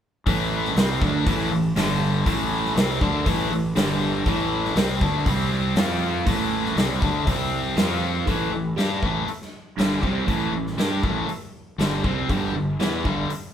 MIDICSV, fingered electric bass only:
0, 0, Header, 1, 3, 480
1, 0, Start_track
1, 0, Key_signature, 0, "minor"
1, 0, Tempo, 501672
1, 248, Time_signature, 4, 2, 24, 8
1, 7914, Key_signature, 0, "minor"
1, 12953, End_track
2, 0, Start_track
2, 0, Title_t, "Fingered electric bass"
2, 0, Program_c, 0, 33
2, 253, Note_on_c, 0, 33, 84
2, 696, Note_off_c, 0, 33, 0
2, 731, Note_on_c, 0, 36, 89
2, 951, Note_off_c, 0, 36, 0
2, 970, Note_on_c, 0, 38, 86
2, 1191, Note_off_c, 0, 38, 0
2, 1209, Note_on_c, 0, 33, 84
2, 1430, Note_off_c, 0, 33, 0
2, 1444, Note_on_c, 0, 33, 82
2, 1667, Note_off_c, 0, 33, 0
2, 1682, Note_on_c, 0, 31, 97
2, 2128, Note_off_c, 0, 31, 0
2, 2165, Note_on_c, 0, 33, 96
2, 2609, Note_off_c, 0, 33, 0
2, 2634, Note_on_c, 0, 36, 79
2, 2860, Note_off_c, 0, 36, 0
2, 2884, Note_on_c, 0, 38, 92
2, 3105, Note_off_c, 0, 38, 0
2, 3119, Note_on_c, 0, 33, 89
2, 3342, Note_off_c, 0, 33, 0
2, 3352, Note_on_c, 0, 33, 84
2, 3578, Note_off_c, 0, 33, 0
2, 3591, Note_on_c, 0, 31, 93
2, 4040, Note_off_c, 0, 31, 0
2, 4075, Note_on_c, 0, 33, 104
2, 4522, Note_off_c, 0, 33, 0
2, 4551, Note_on_c, 0, 36, 89
2, 4777, Note_off_c, 0, 36, 0
2, 4796, Note_on_c, 0, 38, 97
2, 5019, Note_off_c, 0, 38, 0
2, 5036, Note_on_c, 0, 36, 92
2, 5482, Note_off_c, 0, 36, 0
2, 5507, Note_on_c, 0, 41, 93
2, 5957, Note_off_c, 0, 41, 0
2, 5992, Note_on_c, 0, 33, 91
2, 6439, Note_off_c, 0, 33, 0
2, 6472, Note_on_c, 0, 36, 88
2, 6696, Note_off_c, 0, 36, 0
2, 6719, Note_on_c, 0, 38, 88
2, 6940, Note_off_c, 0, 38, 0
2, 6955, Note_on_c, 0, 36, 86
2, 7401, Note_off_c, 0, 36, 0
2, 7429, Note_on_c, 0, 41, 93
2, 7878, Note_off_c, 0, 41, 0
2, 7914, Note_on_c, 0, 33, 88
2, 8137, Note_off_c, 0, 33, 0
2, 8150, Note_on_c, 0, 33, 75
2, 8375, Note_off_c, 0, 33, 0
2, 8390, Note_on_c, 0, 43, 86
2, 8616, Note_off_c, 0, 43, 0
2, 8634, Note_on_c, 0, 33, 70
2, 8858, Note_off_c, 0, 33, 0
2, 9355, Note_on_c, 0, 31, 75
2, 9580, Note_off_c, 0, 31, 0
2, 9594, Note_on_c, 0, 36, 74
2, 9819, Note_off_c, 0, 36, 0
2, 9831, Note_on_c, 0, 33, 85
2, 10058, Note_off_c, 0, 33, 0
2, 10070, Note_on_c, 0, 33, 68
2, 10298, Note_off_c, 0, 33, 0
2, 10309, Note_on_c, 0, 43, 85
2, 10538, Note_off_c, 0, 43, 0
2, 10557, Note_on_c, 0, 33, 75
2, 10782, Note_off_c, 0, 33, 0
2, 11275, Note_on_c, 0, 31, 85
2, 11502, Note_off_c, 0, 31, 0
2, 11521, Note_on_c, 0, 36, 73
2, 11746, Note_off_c, 0, 36, 0
2, 11760, Note_on_c, 0, 31, 88
2, 11986, Note_off_c, 0, 31, 0
2, 12001, Note_on_c, 0, 31, 75
2, 12226, Note_off_c, 0, 31, 0
2, 12245, Note_on_c, 0, 40, 76
2, 12469, Note_off_c, 0, 40, 0
2, 12488, Note_on_c, 0, 31, 85
2, 12711, Note_off_c, 0, 31, 0
2, 12953, End_track
3, 0, Start_track
3, 0, Title_t, "Muted fingered electric bass strokes"
3, 8869, Note_on_c, 9, 29, 34
3, 8965, Note_off_c, 9, 29, 0
3, 10795, Note_on_c, 9, 29, 35
3, 10890, Note_off_c, 9, 29, 0
3, 12729, Note_on_c, 9, 29, 37
3, 12825, Note_off_c, 9, 29, 0
3, 12953, End_track
0, 0, End_of_file